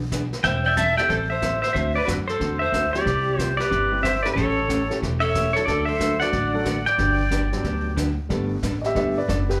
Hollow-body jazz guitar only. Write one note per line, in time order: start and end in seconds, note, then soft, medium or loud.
0.12 0.23 E3 medium
0.12 0.23 B3 medium
0.12 0.24 D4 medium
0.12 0.24 G#4 medium
0.43 0.65 E3 medium
0.43 0.66 G3 medium
0.43 0.66 C4 medium
0.43 0.66 E4 medium
0.43 0.66 A4 medium
0.76 0.88 E3 medium
0.76 0.88 G3 medium
0.76 0.89 C4 medium
0.76 0.89 E4 medium
0.76 0.89 A4 medium
1.09 1.31 E3 medium
1.09 1.31 G3 medium
1.09 1.31 C4 medium
1.09 1.31 E4 medium
1.09 1.32 A4 medium
1.42 1.54 E3 medium
1.42 1.54 G3 medium
1.42 1.54 C4 medium
1.42 1.54 E4 medium
1.42 1.54 A4 medium
1.75 1.96 D3 medium
1.75 1.97 A3 medium
1.75 1.97 C4 medium
1.75 1.97 F#4 medium
1.75 1.97 A4 medium
2.07 2.19 D3 medium
2.07 2.19 A3 medium
2.07 2.19 C4 medium
2.07 2.20 F#4 medium
2.07 2.20 A4 medium
2.40 2.62 D3 medium
2.40 2.62 A3 medium
2.40 2.62 C4 medium
2.40 2.62 F#4 medium
2.40 2.62 A4 medium
2.72 2.84 D3 medium
2.72 2.84 A3 medium
2.72 2.85 C4 medium
2.72 2.85 F#4 medium
2.72 2.85 A4 medium
3.05 3.27 C3 medium
3.05 3.27 G3 medium
3.05 3.28 C4 medium
3.05 3.28 E4 medium
3.05 3.28 G4 medium
3.38 3.50 C3 medium
3.38 3.50 G3 medium
3.38 3.50 C4 medium
3.38 3.51 E4 medium
3.38 3.51 G4 medium
3.70 3.92 C3 medium
3.70 3.93 G3 medium
3.70 3.93 C4 medium
3.70 3.93 E4 medium
3.70 3.93 G4 medium
4.03 4.15 C3 medium
4.03 4.15 G3 medium
4.03 4.15 C4 medium
4.03 4.16 E4 medium
4.03 4.16 G4 medium
4.35 4.58 C#3 medium
4.35 4.58 E3 medium
4.35 4.58 A3 medium
4.35 4.58 C#4 medium
4.35 4.58 G4 medium
4.68 4.81 C#3 medium
4.68 4.81 E3 medium
4.68 4.81 A3 medium
4.68 4.81 C#4 medium
4.68 4.81 G4 medium
5.02 5.24 C#3 medium
5.02 5.24 E3 medium
5.02 5.24 A3 medium
5.02 5.24 C#4 medium
5.02 5.25 G4 medium
5.35 5.47 C#3 medium
5.35 5.47 E3 medium
5.35 5.47 A3 medium
5.35 5.47 C#4 medium
5.35 5.47 G4 medium
5.67 5.89 D3 medium
5.67 5.89 F#3 medium
5.67 5.90 A3 medium
5.67 5.90 D4 medium
5.67 5.90 F#4 medium
5.99 6.12 D3 medium
5.99 6.12 F#3 medium
5.99 6.12 A3 medium
5.99 6.12 D4 medium
5.99 6.12 F#4 medium
6.33 6.55 D3 medium
6.33 6.55 F#3 medium
6.33 6.55 A3 medium
6.33 6.55 D4 medium
6.33 6.55 F#4 medium
6.65 6.77 D3 medium
6.65 6.78 F#3 medium
6.65 6.78 A3 medium
6.65 6.78 D4 medium
6.65 6.78 F#4 medium
6.99 7.20 D3 medium
6.99 7.21 F#3 medium
6.99 7.21 B3 medium
6.99 7.21 D4 medium
6.99 7.21 G4 medium
7.30 7.43 D3 medium
7.30 7.43 F#3 medium
7.30 7.43 B3 medium
7.30 7.43 D4 medium
7.30 7.44 G4 medium
7.63 7.86 D3 medium
7.63 7.86 F#3 medium
7.63 7.86 B3 medium
7.63 7.86 D4 medium
7.63 7.87 G4 medium
7.96 8.09 D3 medium
7.96 8.09 F#3 medium
7.96 8.09 B3 medium
7.96 8.09 D4 medium
7.96 8.09 G4 medium
8.30 8.52 G3 medium
8.30 8.52 B3 medium
8.30 8.52 D4 medium
8.30 8.52 A4 medium
8.63 8.74 G3 medium
8.63 8.75 B3 medium
8.63 8.75 D4 medium
8.63 8.75 A4 medium
8.95 9.17 G3 medium
8.95 9.17 B3 medium
8.95 9.18 D4 medium
8.95 9.18 A4 medium
9.28 9.40 G3 medium
9.28 9.40 B3 medium
9.28 9.40 D4 medium
9.28 9.40 A4 medium